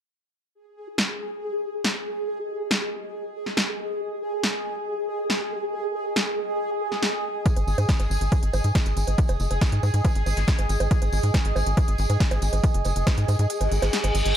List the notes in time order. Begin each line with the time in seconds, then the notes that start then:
0.55 G#4
0.73 G#5
0.86 D#5
0.98 snare
1.84 snare
2.71 snare
3.46 snare
3.57 snare
4.43 snare
5.30 snare
6.16 snare
6.92 snare
7.02 snare
7.45 kick, closed hi-hat, tambourine
7.56 G#1, closed hi-hat, tambourine, high bongo
7.67 G#1, tambourine
7.78 G#2, closed hi-hat, tambourine, high bongo
7.88 kick, snare, closed hi-hat, tambourine
8.00 G#1, closed hi-hat, tambourine, high bongo
8.10 G#1, tambourine
8.21 G#1, closed hi-hat, tambourine
8.32 kick, closed hi-hat, tambourine, high bongo
8.43 G#1, closed hi-hat, tambourine
8.53 G#1, tambourine, high bongo
8.64 G#2, closed hi-hat, tambourine
8.75 kick, snare, closed hi-hat, tambourine, high bongo
8.85 G#1, closed hi-hat, tambourine
8.97 G#1, closed hi-hat, tambourine
9.07 G#1, closed hi-hat, tambourine, high bongo
9.18 kick, closed hi-hat, tambourine
9.28 F#1, closed hi-hat, tambourine, high bongo
9.40 F#1, tambourine
9.50 F#1, closed hi-hat, tambourine, high bongo
9.61 kick, snare, closed hi-hat, tambourine
9.72 G#2, closed hi-hat, tambourine
9.83 G#2, tambourine, high bongo
9.94 G#2, closed hi-hat, tambourine
10.05 kick, closed hi-hat, tambourine, high bongo
10.15 G#1, closed hi-hat, tambourine
10.26 G#1, tambourine, high bongo
10.37 G#1, snare, closed hi-hat, tambourine
10.47 kick, snare, closed hi-hat, tambourine
10.58 G#1, closed hi-hat, tambourine, high bongo
10.69 G#1, closed hi-hat, tambourine
10.80 G#1, closed hi-hat, tambourine, high bongo
10.91 kick, closed hi-hat, tambourine
11.02 G#1, closed hi-hat, tambourine, high bongo
11.12 G#1, tambourine
11.23 G#2, closed hi-hat, tambourine
11.34 kick, snare, closed hi-hat, tambourine, high bongo
11.45 G#1, closed hi-hat, tambourine
11.56 G#1, tambourine, high bongo
11.67 G#1, closed hi-hat, tambourine
11.77 kick, closed hi-hat, tambourine, high bongo
11.88 G#1, closed hi-hat, tambourine
11.98 G#1, tambourine
12.10 G#2, closed hi-hat, tambourine, high bongo
12.20 kick, snare, closed hi-hat, tambourine
12.31 G#1, closed hi-hat, tambourine, high bongo
12.42 G#1, closed hi-hat, tambourine
12.53 G#1, closed hi-hat, tambourine, high bongo
12.64 kick, closed hi-hat, tambourine
12.74 F#1, closed hi-hat, tambourine
12.85 F#1, closed hi-hat, tambourine, high bongo
12.96 F#1, closed hi-hat, tambourine
13.07 kick, snare, closed hi-hat, tambourine, high bongo
13.17 G#2, closed hi-hat, tambourine
13.28 G#2, closed hi-hat, tambourine, high bongo
13.39 G#2, closed hi-hat, tambourine
13.50 closed hi-hat, tambourine, reverse cymbal
13.61 G#1, closed hi-hat, tambourine, high bongo
13.72 G#1, closed hi-hat, tambourine
13.82 G#1, snare, closed hi-hat, tambourine, high bongo
13.93 snare, closed hi-hat, tambourine
14.04 G#1, closed hi-hat, tambourine, high bongo
14.15 G#1, closed hi-hat, tambourine
14.26 G#1, closed hi-hat, tambourine